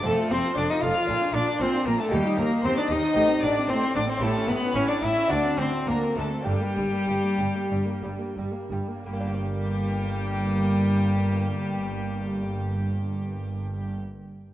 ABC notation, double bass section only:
X:1
M:4/4
L:1/8
Q:1/4=99
K:Gm
V:1 name="Double bass section" clef=bass
F,,, F,,, F,,, F,,, B,,, B,,, B,,, B,,, | E,, E,, E,, E,, A,,, A,,, A,,, A,,, | A,,, A,,, A,,, A,,, D,, D,, D,, D,, | G,,, G,,, G,,, G,,, G,,, G,,, G,,, G,,, |
G,,,8- | G,,,8 |]